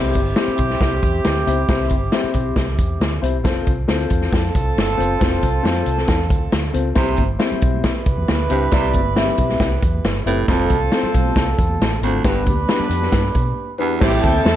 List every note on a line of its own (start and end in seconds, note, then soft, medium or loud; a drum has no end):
0.00 0.17 C2 medium
0.00 0.18 C4 medium
0.00 3.18 C4 medium
0.00 0.18 E4 medium
0.00 3.18 E4 medium
0.00 0.18 G4 medium
0.00 3.18 G4 medium
0.00 0.19 C5 medium
0.14 0.32 G1 medium
0.14 kick medium
0.14 closed hi-hat medium
0.36 0.87 C4 medium
0.36 0.87 E4 medium
0.36 0.87 G4 medium
0.36 0.87 C5 medium
0.36 snare loud
0.36 closed hi-hat medium
0.48 muted fingered electric bass stroke soft
0.58 0.76 B1 medium
0.58 kick medium
0.58 closed hi-hat medium
0.70 snare soft
0.81 0.98 C2 medium
0.81 kick medium
0.81 snare medium
0.81 closed hi-hat medium
1.03 1.20 E2 medium
1.03 kick medium
1.03 closed hi-hat medium
1.24 1.42 D2 medium
1.24 snare loud
1.24 closed hi-hat medium
1.47 1.64 C#2 medium
1.47 1.59 C4 medium
1.47 1.59 E4 medium
1.47 1.59 G4 medium
1.47 1.60 C5 medium
1.47 closed hi-hat medium
1.68 1.92 C2 medium
1.68 1.94 C4 medium
1.68 1.94 E4 medium
1.68 1.94 G4 medium
1.68 1.94 C5 medium
1.68 kick loud
1.68 snare loud
1.68 closed hi-hat medium
1.89 2.08 G1 medium
1.89 kick medium
1.89 closed hi-hat medium
2.12 2.62 C4 medium
2.12 2.62 E4 medium
2.12 2.62 G4 medium
2.12 2.62 C5 medium
2.12 snare loud
2.12 closed hi-hat medium
2.24 muted fingered electric bass stroke soft
2.34 2.51 B1 medium
2.34 kick medium
2.34 closed hi-hat medium
2.56 2.79 C2 medium
2.56 kick medium
2.56 snare loud
2.56 closed hi-hat medium
2.79 2.96 E2 medium
2.79 kick medium
2.79 closed hi-hat medium
3.00 3.18 D2 medium
3.00 snare loud
3.00 closed hi-hat medium
3.21 3.45 C2 medium
3.21 3.35 C4 medium
3.21 3.35 E4 medium
3.21 3.35 G4 medium
3.21 3.35 C5 medium
3.21 closed hi-hat medium
3.44 3.62 F1 medium
3.44 3.69 C4 medium
3.44 3.69 F4 medium
3.44 3.69 A4 medium
3.44 3.69 C5 medium
3.44 kick loud
3.44 snare loud
3.44 closed hi-hat loud
3.66 3.84 C2 medium
3.66 kick medium
3.66 closed hi-hat medium
3.88 4.06 D2 medium
3.88 4.38 C4 medium
3.88 4.38 F4 medium
3.88 4.38 A4 medium
3.88 4.38 C5 medium
3.88 snare loud
3.88 closed hi-hat medium
4.10 4.28 E2 medium
4.10 kick medium
4.10 closed hi-hat medium
4.21 snare soft
4.31 4.50 F2 medium
4.31 6.70 C4 medium
4.31 6.71 F4 medium
4.31 6.70 A4 loud
4.31 kick medium
4.31 snare loud
4.31 closed hi-hat medium
4.55 4.72 C2 medium
4.55 kick medium
4.55 closed hi-hat medium
4.76 4.94 G1 medium
4.76 snare loud
4.76 closed hi-hat medium
4.97 5.16 F#1 loud
4.97 5.11 C4 medium
4.97 5.10 F4 medium
4.97 5.10 A4 medium
4.97 5.11 C5 medium
4.97 closed hi-hat medium
5.19 5.38 F1 medium
5.19 5.45 C4 medium
5.19 5.45 F4 medium
5.19 5.45 A4 medium
5.19 5.45 C5 medium
5.19 kick loud
5.19 snare loud
5.19 closed hi-hat medium
5.42 5.60 C2 medium
5.42 kick medium
5.42 closed hi-hat medium
5.63 5.81 F2 medium
5.63 6.14 C4 medium
5.63 6.14 F4 medium
5.63 6.14 A4 medium
5.63 6.14 C5 medium
5.63 snare loud
5.63 closed hi-hat medium
5.86 6.03 C2 medium
5.86 closed hi-hat medium
5.98 snare soft
6.08 6.30 E2 medium
6.08 kick medium
6.08 snare loud
6.08 closed hi-hat medium
6.30 6.47 D2 medium
6.30 kick medium
6.30 closed hi-hat medium
6.52 6.70 D2 medium
6.52 snare loud
6.52 closed hi-hat medium
6.73 6.92 C#2 medium
6.73 6.87 C4 medium
6.73 6.86 F4 medium
6.73 6.87 A4 medium
6.73 6.87 C5 medium
6.73 closed hi-hat medium
6.95 7.14 C2 medium
6.95 7.28 C3 medium
6.95 7.21 C4 medium
6.95 7.21 E4 medium
6.95 7.21 G4 medium
6.95 7.21 C5 medium
6.95 kick loud
6.95 snare loud
6.95 closed hi-hat medium
6.95 muted conga soft
6.95 low conga medium
7.08 muted conga soft
7.16 7.36 G1 medium
7.16 kick medium
7.16 closed hi-hat medium
7.16 high conga medium
7.39 7.90 C4 medium
7.39 7.90 E4 medium
7.39 7.90 G4 medium
7.39 7.90 C5 medium
7.39 snare loud
7.39 closed hi-hat medium
7.39 muted conga soft
7.51 muted fingered electric bass stroke soft
7.51 low conga medium
7.61 7.88 B1 medium
7.61 kick medium
7.61 closed hi-hat medium
7.61 low conga medium
7.74 high conga medium
7.84 10.24 E4 medium
7.84 10.23 G4 medium
7.84 10.24 B4 medium
7.84 kick medium
7.84 snare loud
7.84 closed hi-hat medium
7.84 muted conga soft
7.96 muted conga soft
8.06 8.15 C2 medium
8.06 kick medium
8.06 closed hi-hat medium
8.18 8.26 E2 medium
8.18 high conga soft
8.28 8.46 D2 medium
8.28 snare loud
8.28 closed hi-hat medium
8.28 muted conga soft
8.28 high conga medium
8.41 muted conga soft
8.50 8.68 C#2 medium
8.50 8.69 G2 medium
8.50 8.63 C4 medium
8.50 8.63 E4 medium
8.50 8.63 G4 medium
8.50 8.63 C5 medium
8.50 closed hi-hat medium
8.71 8.96 C2 medium
8.71 8.91 C3 medium
8.71 8.98 C4 medium
8.71 8.98 E4 medium
8.71 8.98 G4 medium
8.71 8.98 D5 medium
8.71 kick loud
8.71 snare loud
8.71 closed hi-hat medium
8.71 low conga medium
8.85 muted conga soft
8.93 9.29 G1 medium
8.93 kick medium
8.93 closed hi-hat medium
8.93 high conga medium
9.16 9.66 C4 medium
9.16 9.22 D#4 soft
9.16 9.67 G4 medium
9.16 9.67 E5 medium
9.16 snare loud
9.16 closed hi-hat medium
9.22 9.69 E4 medium
9.28 low conga medium
9.38 9.56 B1 medium
9.38 kick medium
9.38 closed hi-hat medium
9.38 low conga soft
9.49 snare soft
9.49 high conga medium
9.60 9.77 C2 medium
9.60 kick medium
9.60 snare loud
9.60 closed hi-hat medium
9.82 10.00 E2 medium
9.82 kick medium
9.82 closed hi-hat medium
9.94 high conga soft
10.04 10.22 G1 medium
10.04 snare loud
10.04 closed hi-hat medium
10.04 high conga medium
10.26 10.43 F#1 medium
10.26 10.44 A2 medium
10.26 10.39 C4 medium
10.26 10.39 E4 medium
10.26 10.39 G4 medium
10.26 10.39 B4 medium
10.26 closed hi-hat medium
10.48 10.66 F1 medium
10.48 10.79 F2 medium
10.48 10.74 C4 medium
10.48 12.00 C4 medium
10.48 10.74 F4 medium
10.48 12.01 F4 medium
10.48 10.74 A4 medium
10.48 12.00 A4 medium
10.48 10.74 C5 medium
10.48 kick loud
10.48 snare loud
10.48 closed hi-hat medium
10.48 muted conga soft
10.48 low conga medium
10.69 10.88 C2 medium
10.69 kick medium
10.69 closed hi-hat medium
10.69 high conga medium
10.92 11.43 C4 medium
10.92 11.43 F4 medium
10.92 11.43 A4 medium
10.92 11.43 C5 medium
10.92 snare loud
10.92 closed hi-hat medium
10.92 muted conga soft
11.03 muted fingered electric bass stroke soft
11.03 muted conga soft
11.03 low conga medium
11.14 11.32 B1 medium
11.14 kick medium
11.14 closed hi-hat medium
11.14 low conga medium
11.25 high conga medium
11.36 11.53 C2 medium
11.36 kick medium
11.36 snare loud
11.36 closed hi-hat medium
11.36 muted conga soft
11.47 muted conga soft
11.59 11.76 E2 medium
11.59 kick medium
11.59 closed hi-hat medium
11.69 high conga medium
11.80 11.97 A1 medium
11.80 snare loud
11.80 closed hi-hat medium
11.80 muted conga soft
11.80 high conga medium
11.91 muted conga soft
12.01 12.19 G#1 medium
12.01 12.21 D2 medium
12.01 12.16 C4 medium
12.01 12.16 F4 medium
12.01 12.16 A4 medium
12.01 12.16 C5 medium
12.01 closed hi-hat medium
12.24 12.48 G1 medium
12.24 12.43 G2 medium
12.24 12.50 B3 medium
12.24 12.50 D4 medium
12.24 13.76 D4 medium
12.24 12.50 G4 medium
12.24 13.76 G4 medium
12.24 12.50 B4 medium
12.24 13.76 B4 medium
12.24 kick loud
12.24 snare loud
12.24 closed hi-hat medium
12.24 muted conga soft
12.24 low conga medium
12.35 muted conga soft
12.45 12.64 D2 medium
12.45 kick medium
12.45 closed hi-hat medium
12.45 high conga medium
12.68 13.19 B3 medium
12.68 13.19 D4 medium
12.68 13.19 G4 medium
12.68 13.19 B4 medium
12.68 snare loud
12.68 closed hi-hat medium
12.68 muted conga soft
12.79 muted fingered electric bass stroke soft
12.79 muted conga soft
12.79 low conga medium
12.89 13.07 F2 medium
12.89 closed hi-hat medium
12.89 low conga medium
13.01 snare soft
13.01 high conga medium
13.12 13.30 G2 loud
13.12 kick medium
13.12 snare medium
13.12 closed hi-hat medium
13.12 muted conga soft
13.24 muted conga soft
13.35 13.52 B2 medium
13.35 kick medium
13.35 closed hi-hat medium
13.46 high conga soft
13.78 13.97 E2 medium
13.78 13.92 B3 medium
13.78 13.92 D4 medium
13.78 13.92 G4 medium
13.78 13.91 B4 medium
14.00 14.19 A1 medium
14.00 14.32 A2 medium
14.00 14.51 C4 medium
14.00 14.19 C4 loud
14.00 14.51 E4 medium
14.00 14.19 E4 loud
14.00 14.19 G4 loud
14.00 14.51 A4 medium
14.00 14.51 C5 medium
14.00 14.50 E5 loud
14.00 kick loud
14.00 snare loud
14.00 crash loud
14.00 muted conga soft
14.00 low conga medium
14.13 muted conga soft
14.21 14.41 D2 medium
14.21 14.56 C4 medium
14.21 14.56 E4 medium
14.21 14.40 G4 medium
14.21 14.56 A4 loud
14.21 14.41 G5 medium
14.21 kick medium
14.21 ride medium
14.21 high conga medium
14.44 14.56 E2 medium
14.44 14.56 A4 loud
14.44 14.56 A5 loud
14.44 snare loud
14.44 ride medium
14.44 muted conga soft